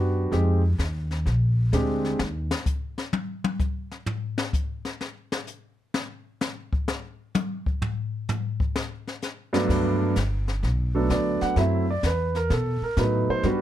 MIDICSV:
0, 0, Header, 1, 5, 480
1, 0, Start_track
1, 0, Key_signature, 1, "major"
1, 0, Tempo, 468750
1, 331, Time_signature, 4, 2, 24, 8
1, 13940, End_track
2, 0, Start_track
2, 0, Title_t, "Grand piano"
2, 0, Program_c, 0, 0
2, 0, Note_on_c, 0, 59, 60
2, 0, Note_on_c, 0, 62, 58
2, 0, Note_on_c, 0, 66, 71
2, 0, Note_on_c, 0, 67, 62
2, 296, Note_off_c, 0, 67, 0
2, 298, Note_off_c, 0, 59, 0
2, 302, Note_off_c, 0, 62, 0
2, 305, Note_off_c, 0, 66, 0
2, 322, Note_on_c, 0, 56, 59
2, 331, Note_on_c, 0, 60, 55
2, 332, Note_on_c, 0, 67, 71
2, 333, Note_on_c, 0, 63, 54
2, 617, Note_off_c, 0, 56, 0
2, 621, Note_off_c, 0, 60, 0
2, 622, Note_off_c, 0, 63, 0
2, 622, Note_off_c, 0, 67, 0
2, 1769, Note_on_c, 0, 56, 67
2, 1775, Note_on_c, 0, 62, 58
2, 1776, Note_on_c, 0, 60, 57
2, 1779, Note_on_c, 0, 67, 68
2, 2250, Note_off_c, 0, 56, 0
2, 2253, Note_off_c, 0, 62, 0
2, 2254, Note_off_c, 0, 60, 0
2, 2255, Note_off_c, 0, 67, 0
2, 9756, Note_on_c, 0, 43, 89
2, 9756, Note_on_c, 0, 54, 80
2, 9764, Note_on_c, 0, 57, 74
2, 9765, Note_on_c, 0, 59, 79
2, 9766, Note_on_c, 0, 62, 97
2, 10368, Note_off_c, 0, 43, 0
2, 10368, Note_off_c, 0, 54, 0
2, 10372, Note_off_c, 0, 57, 0
2, 10373, Note_off_c, 0, 59, 0
2, 10373, Note_off_c, 0, 62, 0
2, 11209, Note_on_c, 0, 54, 62
2, 11212, Note_on_c, 0, 59, 57
2, 11213, Note_on_c, 0, 57, 59
2, 11215, Note_on_c, 0, 69, 76
2, 11218, Note_on_c, 0, 62, 70
2, 11365, Note_off_c, 0, 69, 0
2, 11374, Note_on_c, 0, 74, 84
2, 11683, Note_off_c, 0, 74, 0
2, 11691, Note_on_c, 0, 78, 91
2, 11814, Note_off_c, 0, 54, 0
2, 11816, Note_off_c, 0, 57, 0
2, 11816, Note_off_c, 0, 59, 0
2, 11819, Note_off_c, 0, 62, 0
2, 11843, Note_off_c, 0, 78, 0
2, 11844, Note_on_c, 0, 54, 66
2, 11846, Note_on_c, 0, 60, 58
2, 11850, Note_on_c, 0, 57, 58
2, 11853, Note_on_c, 0, 64, 69
2, 11874, Note_on_c, 0, 76, 78
2, 12135, Note_off_c, 0, 54, 0
2, 12136, Note_off_c, 0, 60, 0
2, 12138, Note_off_c, 0, 57, 0
2, 12140, Note_off_c, 0, 64, 0
2, 12173, Note_off_c, 0, 76, 0
2, 12191, Note_on_c, 0, 74, 84
2, 12332, Note_off_c, 0, 74, 0
2, 12349, Note_on_c, 0, 71, 74
2, 12650, Note_off_c, 0, 71, 0
2, 12658, Note_on_c, 0, 70, 84
2, 12806, Note_off_c, 0, 70, 0
2, 12823, Note_on_c, 0, 69, 71
2, 13128, Note_off_c, 0, 69, 0
2, 13142, Note_on_c, 0, 70, 77
2, 13287, Note_on_c, 0, 54, 58
2, 13288, Note_off_c, 0, 70, 0
2, 13290, Note_on_c, 0, 57, 55
2, 13290, Note_on_c, 0, 59, 50
2, 13295, Note_on_c, 0, 63, 63
2, 13310, Note_on_c, 0, 71, 68
2, 13611, Note_off_c, 0, 71, 0
2, 13622, Note_on_c, 0, 72, 98
2, 13756, Note_off_c, 0, 59, 0
2, 13766, Note_off_c, 0, 54, 0
2, 13768, Note_off_c, 0, 57, 0
2, 13768, Note_off_c, 0, 72, 0
2, 13768, Note_on_c, 0, 55, 66
2, 13770, Note_off_c, 0, 63, 0
2, 13771, Note_on_c, 0, 59, 60
2, 13773, Note_on_c, 0, 62, 61
2, 13776, Note_on_c, 0, 66, 72
2, 13784, Note_on_c, 0, 71, 69
2, 13940, Note_off_c, 0, 55, 0
2, 13940, Note_off_c, 0, 59, 0
2, 13940, Note_off_c, 0, 62, 0
2, 13940, Note_off_c, 0, 66, 0
2, 13940, Note_off_c, 0, 71, 0
2, 13940, End_track
3, 0, Start_track
3, 0, Title_t, "Upright bass"
3, 0, Program_c, 1, 32
3, 0, Note_on_c, 1, 42, 87
3, 312, Note_off_c, 1, 42, 0
3, 323, Note_on_c, 1, 41, 84
3, 792, Note_off_c, 1, 41, 0
3, 803, Note_on_c, 1, 39, 88
3, 1273, Note_off_c, 1, 39, 0
3, 1284, Note_on_c, 1, 34, 78
3, 1753, Note_off_c, 1, 34, 0
3, 1762, Note_on_c, 1, 38, 83
3, 2232, Note_off_c, 1, 38, 0
3, 2247, Note_on_c, 1, 39, 85
3, 2562, Note_off_c, 1, 39, 0
3, 9922, Note_on_c, 1, 43, 80
3, 10390, Note_off_c, 1, 43, 0
3, 10402, Note_on_c, 1, 31, 78
3, 10869, Note_off_c, 1, 31, 0
3, 10882, Note_on_c, 1, 35, 82
3, 11349, Note_off_c, 1, 35, 0
3, 11359, Note_on_c, 1, 38, 83
3, 11662, Note_off_c, 1, 38, 0
3, 11838, Note_on_c, 1, 42, 82
3, 12307, Note_off_c, 1, 42, 0
3, 12318, Note_on_c, 1, 40, 79
3, 12787, Note_off_c, 1, 40, 0
3, 12799, Note_on_c, 1, 47, 87
3, 13102, Note_off_c, 1, 47, 0
3, 13278, Note_on_c, 1, 45, 92
3, 13582, Note_off_c, 1, 45, 0
3, 13756, Note_on_c, 1, 43, 85
3, 13940, Note_off_c, 1, 43, 0
3, 13940, End_track
4, 0, Start_track
4, 0, Title_t, "Muted upright bass strokes"
4, 11689, Note_on_c, 9, 29, 41
4, 11791, Note_off_c, 9, 29, 0
4, 13122, Note_on_c, 9, 29, 38
4, 13225, Note_off_c, 9, 29, 0
4, 13609, Note_on_c, 9, 29, 42
4, 13712, Note_off_c, 9, 29, 0
4, 13940, End_track
5, 0, Start_track
5, 0, Title_t, "Drums"
5, 327, Note_on_c, 9, 36, 22
5, 331, Note_on_c, 9, 25, 45
5, 331, Note_on_c, 9, 38, 43
5, 429, Note_off_c, 9, 36, 0
5, 433, Note_off_c, 9, 38, 0
5, 808, Note_on_c, 9, 36, 18
5, 809, Note_on_c, 9, 44, 60
5, 812, Note_on_c, 9, 38, 58
5, 911, Note_off_c, 9, 36, 0
5, 912, Note_off_c, 9, 44, 0
5, 915, Note_off_c, 9, 38, 0
5, 1134, Note_on_c, 9, 38, 36
5, 1236, Note_off_c, 9, 38, 0
5, 1289, Note_on_c, 9, 36, 25
5, 1293, Note_off_c, 9, 25, 0
5, 1293, Note_on_c, 9, 25, 49
5, 1293, Note_on_c, 9, 38, 44
5, 1391, Note_off_c, 9, 36, 0
5, 1395, Note_off_c, 9, 38, 0
5, 1768, Note_on_c, 9, 36, 26
5, 1768, Note_on_c, 9, 44, 57
5, 1771, Note_on_c, 9, 38, 55
5, 1870, Note_off_c, 9, 36, 0
5, 1870, Note_off_c, 9, 44, 0
5, 1873, Note_off_c, 9, 38, 0
5, 2094, Note_on_c, 9, 38, 39
5, 2197, Note_off_c, 9, 38, 0
5, 2245, Note_on_c, 9, 38, 92
5, 2348, Note_off_c, 9, 38, 0
5, 2570, Note_on_c, 9, 38, 93
5, 2638, Note_off_c, 9, 25, 0
5, 2672, Note_off_c, 9, 38, 0
5, 2724, Note_on_c, 9, 36, 74
5, 2724, Note_on_c, 9, 44, 52
5, 2826, Note_off_c, 9, 44, 0
5, 2827, Note_off_c, 9, 36, 0
5, 3049, Note_on_c, 9, 38, 45
5, 3152, Note_off_c, 9, 38, 0
5, 3205, Note_on_c, 9, 48, 95
5, 3307, Note_off_c, 9, 48, 0
5, 3526, Note_on_c, 9, 48, 85
5, 3628, Note_off_c, 9, 48, 0
5, 3681, Note_on_c, 9, 44, 55
5, 3682, Note_on_c, 9, 36, 75
5, 3784, Note_off_c, 9, 44, 0
5, 3785, Note_off_c, 9, 36, 0
5, 4008, Note_on_c, 9, 38, 39
5, 4111, Note_off_c, 9, 38, 0
5, 4161, Note_on_c, 9, 43, 98
5, 4264, Note_off_c, 9, 43, 0
5, 4482, Note_on_c, 9, 38, 90
5, 4585, Note_off_c, 9, 38, 0
5, 4642, Note_on_c, 9, 36, 75
5, 4643, Note_on_c, 9, 44, 53
5, 4745, Note_off_c, 9, 36, 0
5, 4746, Note_off_c, 9, 44, 0
5, 4966, Note_on_c, 9, 38, 49
5, 5068, Note_off_c, 9, 38, 0
5, 5127, Note_on_c, 9, 38, 49
5, 5230, Note_off_c, 9, 38, 0
5, 5448, Note_on_c, 9, 38, 88
5, 5551, Note_off_c, 9, 38, 0
5, 5601, Note_on_c, 9, 44, 53
5, 5703, Note_off_c, 9, 44, 0
5, 6084, Note_on_c, 9, 38, 100
5, 6186, Note_off_c, 9, 38, 0
5, 6563, Note_on_c, 9, 44, 57
5, 6566, Note_on_c, 9, 38, 93
5, 6665, Note_off_c, 9, 44, 0
5, 6668, Note_off_c, 9, 38, 0
5, 6887, Note_on_c, 9, 36, 78
5, 6990, Note_off_c, 9, 36, 0
5, 7044, Note_on_c, 9, 38, 101
5, 7147, Note_off_c, 9, 38, 0
5, 7523, Note_on_c, 9, 44, 56
5, 7526, Note_on_c, 9, 48, 97
5, 7625, Note_off_c, 9, 44, 0
5, 7628, Note_off_c, 9, 48, 0
5, 7848, Note_on_c, 9, 36, 73
5, 7950, Note_off_c, 9, 36, 0
5, 8005, Note_on_c, 9, 43, 94
5, 8108, Note_off_c, 9, 43, 0
5, 8485, Note_on_c, 9, 44, 56
5, 8488, Note_on_c, 9, 43, 100
5, 8588, Note_off_c, 9, 44, 0
5, 8591, Note_off_c, 9, 43, 0
5, 8807, Note_on_c, 9, 36, 77
5, 8909, Note_off_c, 9, 36, 0
5, 8966, Note_on_c, 9, 38, 95
5, 9069, Note_off_c, 9, 38, 0
5, 9292, Note_on_c, 9, 38, 38
5, 9395, Note_off_c, 9, 38, 0
5, 9445, Note_on_c, 9, 44, 58
5, 9448, Note_on_c, 9, 38, 49
5, 9547, Note_off_c, 9, 44, 0
5, 9550, Note_off_c, 9, 38, 0
5, 9769, Note_on_c, 9, 38, 97
5, 9872, Note_off_c, 9, 38, 0
5, 9924, Note_on_c, 9, 36, 67
5, 9930, Note_on_c, 9, 25, 45
5, 9930, Note_on_c, 9, 38, 42
5, 9930, Note_on_c, 9, 49, 67
5, 10027, Note_off_c, 9, 36, 0
5, 10033, Note_off_c, 9, 38, 0
5, 10033, Note_off_c, 9, 49, 0
5, 10401, Note_on_c, 9, 44, 62
5, 10404, Note_on_c, 9, 36, 22
5, 10405, Note_on_c, 9, 38, 55
5, 10504, Note_off_c, 9, 44, 0
5, 10506, Note_off_c, 9, 36, 0
5, 10507, Note_off_c, 9, 38, 0
5, 10730, Note_on_c, 9, 38, 38
5, 10833, Note_off_c, 9, 38, 0
5, 10883, Note_on_c, 9, 36, 19
5, 10886, Note_off_c, 9, 25, 0
5, 10886, Note_on_c, 9, 25, 52
5, 10886, Note_on_c, 9, 38, 41
5, 10986, Note_off_c, 9, 36, 0
5, 10989, Note_off_c, 9, 38, 0
5, 11363, Note_on_c, 9, 36, 19
5, 11364, Note_on_c, 9, 44, 54
5, 11367, Note_on_c, 9, 38, 55
5, 11465, Note_off_c, 9, 36, 0
5, 11466, Note_off_c, 9, 44, 0
5, 11469, Note_off_c, 9, 38, 0
5, 11685, Note_on_c, 9, 38, 36
5, 11787, Note_off_c, 9, 38, 0
5, 11838, Note_off_c, 9, 25, 0
5, 11838, Note_on_c, 9, 25, 39
5, 11838, Note_on_c, 9, 38, 43
5, 11841, Note_on_c, 9, 36, 25
5, 11941, Note_off_c, 9, 38, 0
5, 11943, Note_off_c, 9, 36, 0
5, 12317, Note_on_c, 9, 44, 47
5, 12320, Note_on_c, 9, 38, 62
5, 12321, Note_on_c, 9, 36, 23
5, 12419, Note_off_c, 9, 44, 0
5, 12423, Note_off_c, 9, 38, 0
5, 12424, Note_off_c, 9, 36, 0
5, 12645, Note_on_c, 9, 38, 36
5, 12747, Note_off_c, 9, 38, 0
5, 12802, Note_off_c, 9, 25, 0
5, 12802, Note_on_c, 9, 25, 46
5, 12802, Note_on_c, 9, 38, 43
5, 12803, Note_on_c, 9, 36, 22
5, 12905, Note_off_c, 9, 36, 0
5, 12905, Note_off_c, 9, 38, 0
5, 13278, Note_on_c, 9, 44, 53
5, 13281, Note_on_c, 9, 36, 22
5, 13281, Note_on_c, 9, 38, 62
5, 13381, Note_off_c, 9, 44, 0
5, 13384, Note_off_c, 9, 36, 0
5, 13384, Note_off_c, 9, 38, 0
5, 13756, Note_off_c, 9, 25, 0
5, 13756, Note_on_c, 9, 25, 51
5, 13756, Note_on_c, 9, 38, 43
5, 13760, Note_on_c, 9, 36, 25
5, 13858, Note_off_c, 9, 38, 0
5, 13862, Note_off_c, 9, 36, 0
5, 13940, Note_off_c, 9, 25, 0
5, 13940, End_track
0, 0, End_of_file